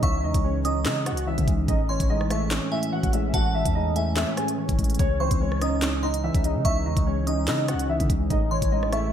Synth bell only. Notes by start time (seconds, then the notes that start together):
0.03 C#6
0.65 D#6
1.89 C6
2.31 C#6
2.72 G#5
3.34 A5
3.96 G#5
5.20 C#6
5.62 D#6
6.03 C6
6.65 C#6
7.27 D#6
8.51 C6
8.93 C#6